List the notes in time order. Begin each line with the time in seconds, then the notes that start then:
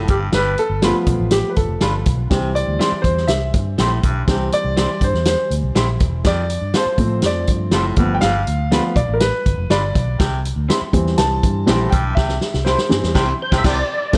Already playing: A4
0.08 G1 G2 G4, kick, closed hi-hat
0.32 G1 G2 B4, snare, closed hi-hat
0.58 A4, closed hi-hat
0.70 G1
0.82 F3 G3 A3 B3 D4 F4 B4, snare, closed hi-hat
1.06 B1, kick, closed hi-hat
1.20 A1
1.31 G4, snare, closed hi-hat
1.50 B4
1.56 G1 A4, kick, closed hi-hat
1.69 F1
1.81 G1 G3 D4 F4 B4, snare, closed hi-hat
2.06 B1, kick, closed hi-hat
2.30 C2 C3 E3 G3 C4, kick, snare, closed hi-hat
2.55 D5, closed hi-hat
2.67 D2
2.79 C4 E4 G4 C5, snare, closed hi-hat
2.92 muted fingered electric bass stroke
3.02 E2 C5, kick, closed hi-hat
3.17 snare
3.28 C2 E5, snare, closed hi-hat
3.54 G2, kick, closed hi-hat
3.78 A#1 A2 C4 E4 G4 C5, snare, closed hi-hat
4.03 B1 G2, kick, closed hi-hat
4.27 C2 C3 E3 G3 C4, kick, snare, closed hi-hat
4.52 D5, closed hi-hat
4.64 C2
4.77 C4 E4 G4 C5, snare, closed hi-hat
5.01 G2 C5, kick, closed hi-hat
5.14 E2, snare
5.25 C5, snare, closed hi-hat
5.51 D2, closed hi-hat
5.63 C2
5.75 A#1 C4 E4 G4 C5, snare, closed hi-hat
6.00 E1, kick, closed hi-hat
6.25 F2 D5, kick, snare, closed hi-hat
6.50 closed hi-hat
6.62 G2
6.74 C4 F4 A4 C5, snare, closed hi-hat
6.86 muted fingered electric bass stroke
6.98 A2 F3 A3 C4, kick, closed hi-hat
7.22 F2, snare, closed hi-hat
7.26 D5
7.47 G2, kick, closed hi-hat
7.71 F#1 A2 C4 F4 A4 C5, snare, closed hi-hat
7.96 G1 G2 F3 A3 B3, kick, closed hi-hat
8.15 G5
8.21 G1 G2 F5, snare, closed hi-hat
8.47 D2, closed hi-hat
8.71 F3 G3 A3 B3 D4 F4 B4, snare, closed hi-hat
8.96 B1 D5, kick, closed hi-hat
9.09 A1
9.14 A#4
9.20 B4, snare, closed hi-hat
9.46 G1, kick, closed hi-hat
9.57 F1
9.70 G1 G3 D4 F4 B4 D5, snare, closed hi-hat
9.95 B1, kick, closed hi-hat
10.19 C2 C3, kick, snare, closed hi-hat
10.45 closed hi-hat
10.56 D2
10.69 C4 E4 G4 C5, snare, closed hi-hat
10.81 muted fingered electric bass stroke
10.93 E2 E3 G3 C4, kick, closed hi-hat
11.06 snare
11.18 C2 A5, snare, closed hi-hat
11.43 G2, kick, closed hi-hat
11.66 A#1 A2 E3 G3 C4 E4 G4 C5, snare, closed hi-hat
11.90 B1 G2 G5, kick, closed hi-hat
12.15 C2 C3 E5, kick, snare
12.29 snare
12.41 snare
12.54 C2, snare
12.65 C4 E4 G4 C5, snare
12.78 snare
12.89 G2 E3 G3 C4, snare
13.03 E2, snare
13.15 C2 C3 C4 E4 G4 C5, kick, snare, crash
13.42 C5
13.51 C2 C3 C4 E4 G4 C5, kick, snare
13.58 E5
13.64 C2 C3 C4 E4 G4 C5 D5, kick, snare, crash
14.13 F1 F2 F3 A3 C4 E4 A4, kick, snare, crash